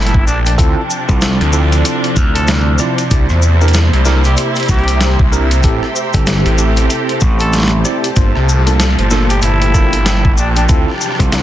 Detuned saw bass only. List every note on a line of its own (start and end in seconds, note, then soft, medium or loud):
0.00 0.25 G1 loud
0.27 0.57 A#1 loud
0.59 0.74 D2 loud
1.41 1.83 D2 loud
3.11 3.27 C2 medium
3.30 3.90 E2 loud
3.93 4.35 C2 loud
4.69 5.16 C2 loud
5.19 5.62 C2 loud
5.64 5.80 A1 medium
6.46 6.88 A1 loud
8.17 8.32 G1 loud
8.36 8.96 C2 loud
8.99 9.41 G1 loud
9.43 10.35 G1 loud
10.38 10.67 A#1 loud
10.69 10.85 D2 medium